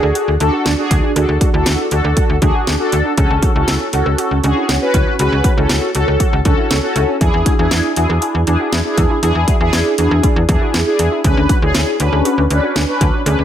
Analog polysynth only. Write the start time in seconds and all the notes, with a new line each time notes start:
Already playing: D4 F#4 G#4
0.40 D4 F#4 A4
0.78 D4 F#4 G#4
1.16 D4 F#4 A4
1.54 D4 F#4 A4
1.92 D4 F#4 A4
2.42 D4 F#4 G#4
2.80 D4 F#4 A4
3.18 C#4 F#4 A4
3.55 C#4 F#4 A4
3.93 C#4 F#4 A4
4.44 C#4 F#4 G#4
4.81 C#4 F#4 B4
5.19 C#4 F#4 B4
5.57 C#4 F#4 A4
5.95 C#4 F#4 A4
6.45 C#4 F#4 A4
6.83 C#4 F#4 A4
7.21 D4 E4 G#4
7.59 D4 E4 G#4
7.96 D4 E4 G#4
8.47 D4 E4 G#4
8.85 D4 E4 G#4
9.23 D4 E4 G#4
9.60 D4 E4 G#4
9.98 D4 E4 G#4
10.49 D4 E4 G#4
10.86 D4 E4 G#4
11.24 C#4 D4 B4
11.62 C#4 D4 G#4
12.00 C#4 D4 B4
12.50 C#4 D4 B4
12.88 C#4 D4 B4
13.26 C#4 D4 B4